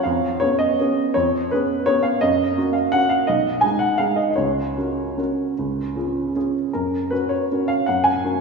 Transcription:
upright piano
0.03 F2 F5
0.40 B3 C#4 G#4 C#5
0.59 D#5
0.80 B3 C#4 G#4
1.14 F2 C#5
1.51 B3 C#4 G#4 B4
1.86 B3 C#4 G#4 C#5
2.03 F5
2.21 F#2 D#5
2.57 A#3 C#4 F#4
2.73 F5
2.92 A#3 C#4 F#4 F#5
3.09 F5
3.27 B1 D#5
3.61 G#3 D#4 G#4 G#5
3.79 F#5
3.98 G#3 D#4 G#4 F5
4.16 D#5
4.30 D#5
4.36 C#2 C#5
4.78 C#4 F#4 A#4
5.17 C#4 F#4 A#4
5.59 C#2
5.96 C#4 F4 G#4
6.35 C#4 F4 G#4
6.73 F#2 A#4
7.10 C#4 F#4 A#4 B4
7.29 C#5
7.51 C#4 F#4 A#4
7.68 F5
7.86 F#2 F#5
8.04 G#5
8.24 C#4 F#4 A#4

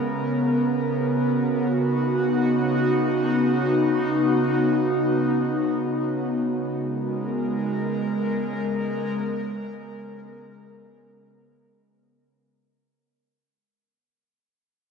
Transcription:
analog synth pad
Already playing: C#3 G#3 B3 A#4
1.02 F#4
1.79 D#4
6.58 G#3
6.84 A#4

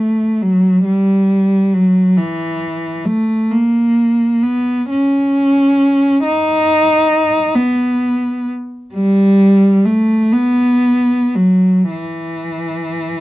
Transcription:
cello
Already playing: A3
0.42 F#3
0.84 G3
1.74 F#3
2.17 E3
3.05 A3
3.51 A#3
4.43 B3
4.90 C#4
6.24 D#4
7.55 B3
8.94 G3
9.85 A3
10.32 B3
11.35 F#3
11.91 E3

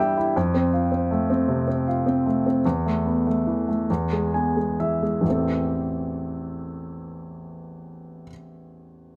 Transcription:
grand piano
Already playing: G2 E3 E4 G4 D5 E5
0.00 G3 G5
0.17 E4
0.36 F2
0.54 C4
0.73 F4
0.92 C4
1.11 A3
1.30 C4
1.48 C3
1.68 C4
1.88 F4
2.06 C4
2.26 A3
2.46 C4
2.66 E2
2.86 A3
3.06 B3
3.27 A3
3.47 E3
3.69 A3
3.90 E2
4.13 G#3
4.34 B3 G#5
4.57 G#3
4.80 E3 E5
5.03 G#3
5.21 A1 E2
5.26 E3 A3
5.30 C4 A4

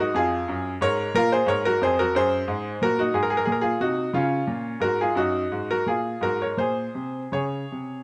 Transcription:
grand piano
0.00 D#4 F#4
0.14 F2 F4 G#4
0.48 F#2
0.81 G#2 A#4 C#5
1.14 A#2 F4 A#4
1.32 G#4 C5
1.46 G#2 A#4 C#5
1.65 F#4 A#4
1.81 F2 G#4 C5
1.99 F#4 A#4
2.15 F#2 G#4 C5
2.48 G#2
2.81 A#2 F#4 A#4
2.99 D#4 F#4
3.14 G#2 G#4
3.23 A#4
3.30 G#4
3.37 A#4
3.45 A#2 G#4
3.52 A#4
3.61 F4 G#4
3.80 C3 D#4 F#4
4.13 C#3 C#4 F4
4.47 A#2
4.80 G#2 F#4 A#4
5.01 F4 G#4
5.15 F#2 D#4 F#4
5.52 G#2
5.71 F#4 A#4
5.86 A#2 F4 G#4
6.21 G#2 F#4 A#4
6.42 A#4 C#5
6.57 A#2 G#4 C5
6.95 C3
7.32 C#3 G#4 C#5
7.72 C3

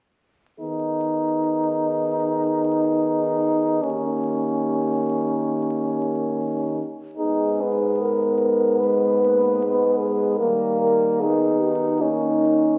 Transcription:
french horn
0.59 D#3 B3 D#4 G#4
3.82 D#3 A#3 C#4 G4
7.17 G#2 B3 D#4 G#4
7.61 B3
8.01 A#4
8.79 G#3 B4
9.22 A#3
9.62 G#3
9.99 G#4
10.38 D#3 G3 A#3 A#4
10.81 A#4
11.20 B3 D#4 G#4
11.60 G4
12.00 A#3 C#4 D#4

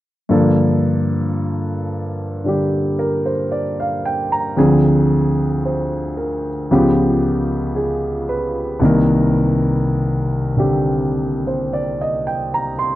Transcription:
grand piano
0.29 G2 D3 F3 A#3 A4
2.44 D3 G3 G4
2.99 A#4
3.26 C5
3.52 D5
3.80 F5
4.05 G5
4.32 A#5
4.57 D2 D3 F3 C4 G#4
5.65 C5
6.17 A#4
6.71 C#2 C#3 F3 B3 G4
7.76 G#4
8.29 B4
8.80 C2 C3 D#3 A#3
8.85 A#4
10.57 C3 D3 C4 G4
11.47 C5
11.73 D5
12.01 D#5
12.27 G5
12.54 A#5
12.79 C6

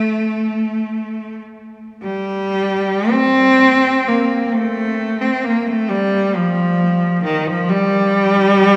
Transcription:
cello
Already playing: A3
2.02 G3
3.10 C4
4.08 A#3
4.54 A3
5.21 C4
5.44 A#3
5.67 A3
5.89 G3
6.36 F3
7.23 D#3
7.47 F3
7.69 G3

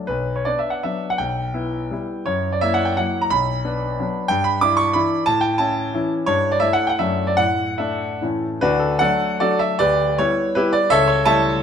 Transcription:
grand piano
0.07 B1 B4
0.36 C#5
0.45 B3 D4 D5
0.59 E5
0.70 F#5
0.83 F#3 B3 D4 E5
1.10 F#5
1.18 B1 G5
1.54 B3 E4
1.91 G3 B3 E4
2.26 F#2 C#5
2.52 D5
2.61 A#3 E4 E5
2.74 F#5
2.85 G5
2.97 F#3 A#3 E4 F#5
3.21 A#5
3.30 B1 B5
3.65 B3 D4
3.99 F#3 B3 D4
4.28 G2 G5
4.44 B5
4.61 D4 E4 D6
4.77 C#6
4.93 E3 D4 E4 B5
5.26 A2 A5
5.41 G5
5.58 C#4 E4 A5
5.94 E3 C#4 E4
6.26 G2 C#5
6.52 D5
6.60 A3 E4 E5
6.73 F#5
6.87 F#5 G5
6.99 F#2 F#3 A3 D4 E5
7.27 D5
7.37 A2 F#5
7.78 A3 D4 E5
8.21 A2 E3 A3 C#4
8.61 D2 D4 F#4 B4
8.79 A4
8.99 F#3 A3 D4 A4 D5 F#5
9.40 F#3 A3 D4 F#4 A4 D5
9.59 E5
9.79 D2 G4 B4 D5
10.18 G3 B3 E4 C#5
10.55 G3 B3 E4 G4 B4
10.73 D5
10.90 C#2 A4 C#5 E5
11.08 C#5
11.25 G3 A3 E4 C#5 E5 A5

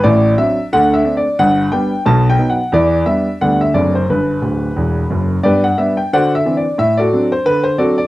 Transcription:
grand piano
0.04 A1 A2 D5
0.38 F#3 C4 D4 E5
0.73 D2 D3 F#5
0.94 E5
1.05 C4 D4
1.17 D5
1.39 G1 G2 F#5
1.72 G3 B3 D4 G5
2.05 B1 B2 A5
2.30 G5
2.38 F#3 B3 D#4
2.50 F#5
2.72 E2 E3 D5
3.06 G3 B3 D4 E5
3.41 D2 D3 G3 B3 D4 F#5
3.61 E5
3.74 F#1 F#2 A3 C4 D4 D5
3.95 C5
4.10 G1 G2 B4
4.42 D1 D2
4.76 E1 E2
5.10 F#1 F#2
5.43 G2 B3 G4 B4 D5
5.64 F#5
5.78 G3 B3 D4 E5
5.97 G5
6.13 D3 F#4 C5 D5 F#5
6.35 E5
6.46 E3 C4 D4
6.57 D5
6.78 A2 E5
6.97 F#4 A4 D5
7.13 F#3 C4 D4
7.32 C5
7.45 D3 B4
7.63 C5
7.78 F#3 C4 D4 F#4 A4 D5
7.98 D5

